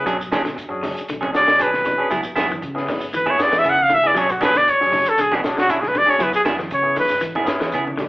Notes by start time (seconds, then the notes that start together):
0.06 B1 F#3 C#4 D4 G#4, kick, closed hi-hat, shekere
0.19 muted clean electric guitar stroke, kick, shekere
0.32 B2 F#3 C#4 D4 G#4, snare, closed hi-hat, high conga, shekere
0.44 D3, muted clean electric guitar stroke, snare, closed hi-hat, high conga, shekere
0.56 muted clean electric guitar stroke, kick, closed hi-hat, shekere
0.68 F#2 C#4 D4 F#4 G#4, muted clean electric guitar stroke
0.83 C#3, open hi-hat, high conga, low conga, shekere
0.95 muted clean electric guitar stroke, closed hi-hat, shekere
1.08 B1 D3, closed hi-hat, high conga, shekere
1.21 F#3 C#4 G#4, high conga, low conga
1.32 B1 C#4 D4 F#4 G#4 D5, muted clean electric guitar stroke, snare, closed hi-hat, shekere
1.48 B1 D3, snare, shekere
1.59 F#3 D4 G#4 B4, muted clean electric guitar stroke, closed hi-hat, shekere
1.72 muted clean electric guitar stroke, snare, high conga
1.84 C#3, muted clean electric guitar stroke, kick, snare, closed hi-hat, high conga, low conga, shekere
1.97 C#4 D4 F#4 G#4, muted fingered electric bass stroke
2.10 C#2 F#3 B3 E4 G#4, kick, snare, closed hi-hat, shekere
2.23 muted clean electric guitar stroke, muted fingered electric bass stroke, kick, shekere
2.36 F#2 B3 E4 G#4, snare, closed hi-hat, high conga, shekere
2.49 E3, muted clean electric guitar stroke, high conga, shekere
2.62 C#3, muted clean electric guitar stroke, kick, closed hi-hat, shekere
2.75 B3 C#4 E4 G#4, muted clean electric guitar stroke, snare
2.88 D3, kick, snare, open hi-hat, high conga, low conga, shekere
3.00 G#1, muted clean electric guitar stroke, shekere
3.13 E3 B4, closed hi-hat, high conga, shekere
3.26 B3 E4 G#4, high conga
3.30 C#5
3.38 B3 C#4 E4 G#4, muted clean electric guitar stroke, snare, closed hi-hat, shekere
3.42 D5
3.52 E3, muted fingered electric bass stroke, snare, closed hi-hat, shekere
3.59 E5
3.64 C#3 B3 E4 G#4, closed hi-hat, shekere
3.70 F#5
3.78 muted clean electric guitar stroke, high conga
3.83 F5
3.90 C#2 D3, muted clean electric guitar stroke, kick, closed hi-hat, low conga, shekere
3.94 E5
4.03 B3 C#4 E4 G#4, closed hi-hat
4.07 D5
4.15 B1 F#3 C#4 D4 G#4, kick, closed hi-hat, shekere
4.19 C#5
4.29 F#4, muted clean electric guitar stroke, kick, shekere
4.40 B2 F#3 C#4 D4 G#4 B4, snare, closed hi-hat, high conga, shekere
4.54 D3 D5, muted clean electric guitar stroke, snare, closed hi-hat, high conga, shekere
4.67 C#5, muted clean electric guitar stroke, kick, closed hi-hat, shekere
4.81 F#2 C#4 D4 F#4 G#4, muted clean electric guitar stroke, snare
4.92 C#3, open hi-hat, high conga, low conga, shekere
5.06 A4, muted clean electric guitar stroke, closed hi-hat, shekere
5.18 B1 D3 G#4, closed hi-hat, high conga, shekere
5.32 F#3 B3 C#4 D4 G#4, snare, high conga, low conga
5.43 B1 C#4 D4 F#4 G#4, muted clean electric guitar stroke, snare, closed hi-hat, shekere
5.57 B1 D3 F#4, snare, shekere
5.68 F#3 C#4 D4 E4 G#4, closed hi-hat, shekere
5.81 G#4, muted clean electric guitar stroke, snare, high conga
5.88 B4
5.93 D3, muted clean electric guitar stroke, kick, closed hi-hat, low conga, shekere
5.98 D5
6.06 C#4 D4 F#4 G#4 C#5, snare
6.10 muted fingered electric bass stroke
6.19 C#2 F#3 B3 E4 G#4, kick, snare, closed hi-hat, shekere
6.23 B4
6.32 G#4, muted clean electric guitar stroke, muted fingered electric bass stroke, kick, shekere
6.45 B3 E4 G#4, snare, closed hi-hat, high conga, shekere
6.49 F#2
6.58 E3, muted clean electric guitar stroke, snare, high conga, shekere
6.70 C#3 C#5, muted clean electric guitar stroke, kick, closed hi-hat, shekere
6.82 B3 C#4 E4 G#4, muted clean electric guitar stroke
6.96 D3 B4, kick, open hi-hat, high conga, low conga, shekere
7.08 G#1, muted clean electric guitar stroke, snare, shekere
7.21 E3, closed hi-hat, high conga, shekere
7.35 B3 E4 G#4, high conga
7.44 B3 C#4 E4 G#4, snare, closed hi-hat, shekere
7.49 muted clean electric guitar stroke
7.60 E3, muted fingered electric bass stroke, snare, closed hi-hat, shekere
7.72 C#3 B3 E4 G#4, closed hi-hat, shekere
7.87 muted clean electric guitar stroke, high conga
7.97 C#2 D3, muted clean electric guitar stroke, kick, snare, closed hi-hat, low conga, shekere